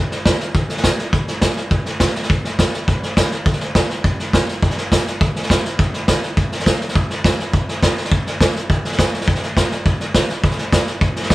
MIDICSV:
0, 0, Header, 1, 2, 480
1, 0, Start_track
1, 0, Tempo, 290698
1, 1872, Time_signature, 4, 2, 24, 8
1, 18739, End_track
2, 0, Start_track
2, 0, Title_t, "Drums"
2, 186, Note_on_c, 9, 38, 34
2, 351, Note_off_c, 9, 38, 0
2, 420, Note_on_c, 9, 38, 123
2, 420, Note_on_c, 9, 44, 92
2, 423, Note_on_c, 9, 36, 93
2, 585, Note_off_c, 9, 38, 0
2, 585, Note_off_c, 9, 44, 0
2, 588, Note_off_c, 9, 36, 0
2, 662, Note_on_c, 9, 38, 36
2, 827, Note_off_c, 9, 38, 0
2, 896, Note_on_c, 9, 38, 37
2, 902, Note_on_c, 9, 36, 113
2, 1062, Note_off_c, 9, 38, 0
2, 1067, Note_off_c, 9, 36, 0
2, 1139, Note_on_c, 9, 38, 37
2, 1268, Note_off_c, 9, 38, 0
2, 1268, Note_on_c, 9, 38, 32
2, 1381, Note_off_c, 9, 38, 0
2, 1381, Note_on_c, 9, 38, 117
2, 1381, Note_on_c, 9, 44, 89
2, 1386, Note_on_c, 9, 36, 86
2, 1546, Note_off_c, 9, 38, 0
2, 1546, Note_off_c, 9, 44, 0
2, 1551, Note_off_c, 9, 36, 0
2, 1627, Note_on_c, 9, 38, 36
2, 1792, Note_off_c, 9, 38, 0
2, 1861, Note_on_c, 9, 38, 39
2, 1865, Note_on_c, 9, 36, 112
2, 2027, Note_off_c, 9, 38, 0
2, 2030, Note_off_c, 9, 36, 0
2, 2105, Note_on_c, 9, 38, 37
2, 2270, Note_off_c, 9, 38, 0
2, 2337, Note_on_c, 9, 38, 119
2, 2337, Note_on_c, 9, 44, 88
2, 2344, Note_on_c, 9, 36, 90
2, 2502, Note_off_c, 9, 38, 0
2, 2502, Note_off_c, 9, 44, 0
2, 2509, Note_off_c, 9, 36, 0
2, 2581, Note_on_c, 9, 38, 39
2, 2746, Note_off_c, 9, 38, 0
2, 2813, Note_on_c, 9, 38, 34
2, 2824, Note_on_c, 9, 36, 115
2, 2978, Note_off_c, 9, 38, 0
2, 2989, Note_off_c, 9, 36, 0
2, 3061, Note_on_c, 9, 38, 35
2, 3226, Note_off_c, 9, 38, 0
2, 3301, Note_on_c, 9, 38, 111
2, 3301, Note_on_c, 9, 44, 92
2, 3306, Note_on_c, 9, 36, 87
2, 3466, Note_off_c, 9, 38, 0
2, 3466, Note_off_c, 9, 44, 0
2, 3471, Note_off_c, 9, 36, 0
2, 3553, Note_on_c, 9, 38, 38
2, 3676, Note_off_c, 9, 38, 0
2, 3676, Note_on_c, 9, 38, 37
2, 3795, Note_on_c, 9, 36, 120
2, 3799, Note_off_c, 9, 38, 0
2, 3799, Note_on_c, 9, 38, 38
2, 3960, Note_off_c, 9, 36, 0
2, 3964, Note_off_c, 9, 38, 0
2, 4037, Note_on_c, 9, 38, 40
2, 4202, Note_off_c, 9, 38, 0
2, 4274, Note_on_c, 9, 36, 91
2, 4274, Note_on_c, 9, 38, 119
2, 4274, Note_on_c, 9, 44, 91
2, 4439, Note_off_c, 9, 36, 0
2, 4439, Note_off_c, 9, 38, 0
2, 4439, Note_off_c, 9, 44, 0
2, 4515, Note_on_c, 9, 38, 39
2, 4680, Note_off_c, 9, 38, 0
2, 4751, Note_on_c, 9, 38, 38
2, 4753, Note_on_c, 9, 36, 110
2, 4916, Note_off_c, 9, 38, 0
2, 4919, Note_off_c, 9, 36, 0
2, 4998, Note_on_c, 9, 38, 38
2, 5163, Note_off_c, 9, 38, 0
2, 5231, Note_on_c, 9, 38, 104
2, 5231, Note_on_c, 9, 44, 91
2, 5233, Note_on_c, 9, 36, 82
2, 5396, Note_off_c, 9, 38, 0
2, 5396, Note_off_c, 9, 44, 0
2, 5399, Note_off_c, 9, 36, 0
2, 5470, Note_on_c, 9, 38, 39
2, 5635, Note_off_c, 9, 38, 0
2, 5704, Note_on_c, 9, 38, 37
2, 5711, Note_on_c, 9, 36, 121
2, 5826, Note_off_c, 9, 38, 0
2, 5826, Note_on_c, 9, 38, 36
2, 5876, Note_off_c, 9, 36, 0
2, 5949, Note_off_c, 9, 38, 0
2, 5949, Note_on_c, 9, 38, 37
2, 6114, Note_off_c, 9, 38, 0
2, 6192, Note_on_c, 9, 38, 126
2, 6192, Note_on_c, 9, 44, 85
2, 6194, Note_on_c, 9, 36, 94
2, 6357, Note_off_c, 9, 38, 0
2, 6357, Note_off_c, 9, 44, 0
2, 6359, Note_off_c, 9, 36, 0
2, 6436, Note_on_c, 9, 38, 38
2, 6601, Note_off_c, 9, 38, 0
2, 6675, Note_on_c, 9, 36, 110
2, 6675, Note_on_c, 9, 38, 36
2, 6840, Note_off_c, 9, 36, 0
2, 6840, Note_off_c, 9, 38, 0
2, 6922, Note_on_c, 9, 38, 36
2, 7087, Note_off_c, 9, 38, 0
2, 7156, Note_on_c, 9, 36, 89
2, 7162, Note_on_c, 9, 38, 120
2, 7162, Note_on_c, 9, 44, 83
2, 7322, Note_off_c, 9, 36, 0
2, 7328, Note_off_c, 9, 38, 0
2, 7328, Note_off_c, 9, 44, 0
2, 7406, Note_on_c, 9, 38, 38
2, 7571, Note_off_c, 9, 38, 0
2, 7637, Note_on_c, 9, 36, 111
2, 7640, Note_on_c, 9, 38, 37
2, 7761, Note_off_c, 9, 38, 0
2, 7761, Note_on_c, 9, 38, 35
2, 7802, Note_off_c, 9, 36, 0
2, 7887, Note_off_c, 9, 38, 0
2, 7887, Note_on_c, 9, 38, 37
2, 8052, Note_off_c, 9, 38, 0
2, 8119, Note_on_c, 9, 36, 91
2, 8124, Note_on_c, 9, 38, 114
2, 8124, Note_on_c, 9, 44, 93
2, 8285, Note_off_c, 9, 36, 0
2, 8289, Note_off_c, 9, 38, 0
2, 8289, Note_off_c, 9, 44, 0
2, 8367, Note_on_c, 9, 38, 41
2, 8532, Note_off_c, 9, 38, 0
2, 8602, Note_on_c, 9, 36, 120
2, 8607, Note_on_c, 9, 38, 36
2, 8767, Note_off_c, 9, 36, 0
2, 8772, Note_off_c, 9, 38, 0
2, 8845, Note_on_c, 9, 38, 36
2, 8959, Note_off_c, 9, 38, 0
2, 8959, Note_on_c, 9, 38, 31
2, 9082, Note_on_c, 9, 36, 91
2, 9088, Note_off_c, 9, 38, 0
2, 9088, Note_on_c, 9, 38, 117
2, 9088, Note_on_c, 9, 44, 91
2, 9247, Note_off_c, 9, 36, 0
2, 9253, Note_off_c, 9, 38, 0
2, 9253, Note_off_c, 9, 44, 0
2, 9327, Note_on_c, 9, 38, 39
2, 9492, Note_off_c, 9, 38, 0
2, 9562, Note_on_c, 9, 36, 118
2, 9562, Note_on_c, 9, 38, 37
2, 9727, Note_off_c, 9, 36, 0
2, 9727, Note_off_c, 9, 38, 0
2, 9799, Note_on_c, 9, 38, 36
2, 9964, Note_off_c, 9, 38, 0
2, 10039, Note_on_c, 9, 38, 118
2, 10039, Note_on_c, 9, 44, 91
2, 10042, Note_on_c, 9, 36, 90
2, 10204, Note_off_c, 9, 38, 0
2, 10204, Note_off_c, 9, 44, 0
2, 10208, Note_off_c, 9, 36, 0
2, 10281, Note_on_c, 9, 38, 39
2, 10446, Note_off_c, 9, 38, 0
2, 10513, Note_on_c, 9, 38, 39
2, 10521, Note_on_c, 9, 36, 118
2, 10678, Note_off_c, 9, 38, 0
2, 10686, Note_off_c, 9, 36, 0
2, 10760, Note_on_c, 9, 38, 38
2, 10887, Note_off_c, 9, 38, 0
2, 10887, Note_on_c, 9, 38, 35
2, 11003, Note_off_c, 9, 38, 0
2, 11003, Note_on_c, 9, 36, 85
2, 11003, Note_on_c, 9, 38, 117
2, 11003, Note_on_c, 9, 44, 91
2, 11168, Note_off_c, 9, 36, 0
2, 11168, Note_off_c, 9, 38, 0
2, 11168, Note_off_c, 9, 44, 0
2, 11241, Note_on_c, 9, 38, 38
2, 11367, Note_off_c, 9, 38, 0
2, 11367, Note_on_c, 9, 38, 35
2, 11483, Note_off_c, 9, 38, 0
2, 11483, Note_on_c, 9, 38, 39
2, 11484, Note_on_c, 9, 36, 118
2, 11648, Note_off_c, 9, 38, 0
2, 11649, Note_off_c, 9, 36, 0
2, 11723, Note_on_c, 9, 38, 38
2, 11888, Note_off_c, 9, 38, 0
2, 11962, Note_on_c, 9, 36, 99
2, 11962, Note_on_c, 9, 38, 113
2, 11962, Note_on_c, 9, 44, 92
2, 12127, Note_off_c, 9, 36, 0
2, 12127, Note_off_c, 9, 38, 0
2, 12127, Note_off_c, 9, 44, 0
2, 12208, Note_on_c, 9, 38, 39
2, 12373, Note_off_c, 9, 38, 0
2, 12442, Note_on_c, 9, 36, 118
2, 12445, Note_on_c, 9, 38, 35
2, 12607, Note_off_c, 9, 36, 0
2, 12610, Note_off_c, 9, 38, 0
2, 12686, Note_on_c, 9, 38, 37
2, 12851, Note_off_c, 9, 38, 0
2, 12921, Note_on_c, 9, 36, 84
2, 12923, Note_on_c, 9, 38, 118
2, 12923, Note_on_c, 9, 44, 86
2, 13087, Note_off_c, 9, 36, 0
2, 13088, Note_off_c, 9, 38, 0
2, 13088, Note_off_c, 9, 44, 0
2, 13165, Note_on_c, 9, 38, 39
2, 13283, Note_off_c, 9, 38, 0
2, 13283, Note_on_c, 9, 38, 36
2, 13400, Note_off_c, 9, 38, 0
2, 13400, Note_on_c, 9, 36, 123
2, 13400, Note_on_c, 9, 38, 37
2, 13565, Note_off_c, 9, 36, 0
2, 13565, Note_off_c, 9, 38, 0
2, 13647, Note_on_c, 9, 38, 39
2, 13812, Note_off_c, 9, 38, 0
2, 13879, Note_on_c, 9, 36, 91
2, 13880, Note_on_c, 9, 38, 116
2, 13880, Note_on_c, 9, 44, 94
2, 14044, Note_off_c, 9, 36, 0
2, 14046, Note_off_c, 9, 38, 0
2, 14046, Note_off_c, 9, 44, 0
2, 14126, Note_on_c, 9, 38, 39
2, 14292, Note_off_c, 9, 38, 0
2, 14361, Note_on_c, 9, 36, 116
2, 14363, Note_on_c, 9, 38, 34
2, 14526, Note_off_c, 9, 36, 0
2, 14528, Note_off_c, 9, 38, 0
2, 14605, Note_on_c, 9, 38, 37
2, 14724, Note_off_c, 9, 38, 0
2, 14724, Note_on_c, 9, 38, 31
2, 14839, Note_on_c, 9, 36, 88
2, 14842, Note_off_c, 9, 38, 0
2, 14842, Note_on_c, 9, 38, 117
2, 14842, Note_on_c, 9, 44, 92
2, 15004, Note_off_c, 9, 36, 0
2, 15007, Note_off_c, 9, 38, 0
2, 15007, Note_off_c, 9, 44, 0
2, 15087, Note_on_c, 9, 38, 38
2, 15204, Note_off_c, 9, 38, 0
2, 15204, Note_on_c, 9, 38, 33
2, 15317, Note_on_c, 9, 36, 108
2, 15318, Note_off_c, 9, 38, 0
2, 15318, Note_on_c, 9, 38, 37
2, 15436, Note_off_c, 9, 38, 0
2, 15436, Note_on_c, 9, 38, 34
2, 15482, Note_off_c, 9, 36, 0
2, 15565, Note_off_c, 9, 38, 0
2, 15565, Note_on_c, 9, 38, 36
2, 15730, Note_off_c, 9, 38, 0
2, 15796, Note_on_c, 9, 36, 96
2, 15800, Note_on_c, 9, 38, 123
2, 15800, Note_on_c, 9, 44, 88
2, 15961, Note_off_c, 9, 36, 0
2, 15966, Note_off_c, 9, 38, 0
2, 15966, Note_off_c, 9, 44, 0
2, 16038, Note_on_c, 9, 38, 36
2, 16203, Note_off_c, 9, 38, 0
2, 16275, Note_on_c, 9, 38, 37
2, 16276, Note_on_c, 9, 36, 120
2, 16440, Note_off_c, 9, 38, 0
2, 16441, Note_off_c, 9, 36, 0
2, 16511, Note_on_c, 9, 38, 36
2, 16676, Note_off_c, 9, 38, 0
2, 16750, Note_on_c, 9, 38, 117
2, 16750, Note_on_c, 9, 44, 90
2, 16753, Note_on_c, 9, 36, 82
2, 16915, Note_off_c, 9, 38, 0
2, 16915, Note_off_c, 9, 44, 0
2, 16918, Note_off_c, 9, 36, 0
2, 16997, Note_on_c, 9, 38, 38
2, 17162, Note_off_c, 9, 38, 0
2, 17232, Note_on_c, 9, 36, 122
2, 17235, Note_on_c, 9, 38, 40
2, 17350, Note_off_c, 9, 38, 0
2, 17350, Note_on_c, 9, 38, 34
2, 17397, Note_off_c, 9, 36, 0
2, 17473, Note_off_c, 9, 38, 0
2, 17473, Note_on_c, 9, 38, 38
2, 17638, Note_off_c, 9, 38, 0
2, 17710, Note_on_c, 9, 36, 92
2, 17712, Note_on_c, 9, 38, 116
2, 17712, Note_on_c, 9, 44, 94
2, 17875, Note_off_c, 9, 36, 0
2, 17877, Note_off_c, 9, 38, 0
2, 17877, Note_off_c, 9, 44, 0
2, 17943, Note_on_c, 9, 38, 36
2, 18108, Note_off_c, 9, 38, 0
2, 18181, Note_on_c, 9, 38, 39
2, 18184, Note_on_c, 9, 36, 113
2, 18346, Note_off_c, 9, 38, 0
2, 18349, Note_off_c, 9, 36, 0
2, 18425, Note_on_c, 9, 38, 38
2, 18538, Note_off_c, 9, 38, 0
2, 18538, Note_on_c, 9, 38, 33
2, 18663, Note_off_c, 9, 38, 0
2, 18663, Note_on_c, 9, 38, 106
2, 18663, Note_on_c, 9, 44, 87
2, 18664, Note_on_c, 9, 36, 92
2, 18739, Note_off_c, 9, 36, 0
2, 18739, Note_off_c, 9, 38, 0
2, 18739, Note_off_c, 9, 44, 0
2, 18739, End_track
0, 0, End_of_file